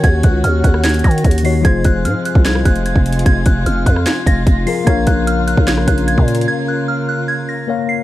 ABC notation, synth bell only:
X:1
M:4/4
L:1/8
Q:1/4=149
K:Fphr
V:1 name="Synth bell"
a' g' f' g' a' b'2 c'' | a' g' f' g' a' g' a'2 | a' g' f' g' a' b'2 c'' | a' g' f' g' a' g' a'2 |
a' g' f' g' a' b'2 c'' |]